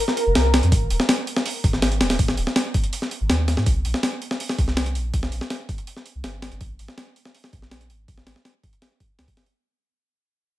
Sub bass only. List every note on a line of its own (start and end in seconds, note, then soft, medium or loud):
0.26 0.34 F1 loud
0.35 0.61 C2 medium
0.63 0.71 F2 loud
0.72 0.89 G#1 loud
0.91 0.99 D#1 medium
1.64 2.02 G#1 medium
2.01 2.17 D#1 loud
2.19 2.36 G#1 loud
2.38 2.46 D#1 medium
3.21 3.29 G#1 medium
3.30 3.56 D#2 medium
3.57 3.66 G#2 loud
3.66 3.83 C2 loud
3.85 3.93 A#1 medium
4.58 4.97 C2 medium
4.95 5.12 A#1 loud
5.14 5.30 C2 loud
5.32 5.40 A#1 medium
6.15 6.23 C2 medium
6.24 6.50 G1 medium
6.52 6.60 G1 loud
6.61 6.77 A#1 loud
6.79 6.88 G#1 medium
7.53 7.91 A#1 medium
7.90 8.06 G#1 medium
8.08 8.25 A#1 loud
8.27 8.35 G#1 medium
9.19 9.27 C#2 medium